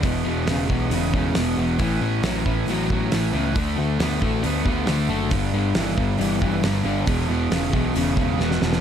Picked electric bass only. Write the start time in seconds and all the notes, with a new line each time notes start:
0.04 E1
0.26 E1
0.47 E1
0.70 B1
0.91 E1
1.14 E1
1.35 E1
1.57 E1
1.80 A1
2.01 A1
2.22 A1
2.46 A1
2.66 A1
2.90 A1
3.12 A1
3.34 C#2
3.56 D2
3.78 D2
3.99 D2
4.22 A1
4.44 D2
4.65 D2
4.87 D2
5.08 F#1
5.32 G1
5.53 G1
5.75 G1
5.98 G1
6.19 G1
6.42 G1
6.63 G1
6.84 G1
7.08 E1
7.28 E1
7.51 E1
7.74 B1
7.94 E1
8.17 E1
8.39 E1
8.61 E1